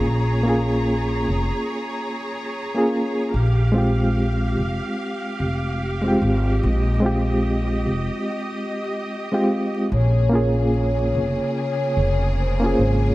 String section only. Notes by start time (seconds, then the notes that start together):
Already playing: G#4 C#5 A#5
3.34 G4 F5
6.63 D#5
9.91 C#3 A#3 G#4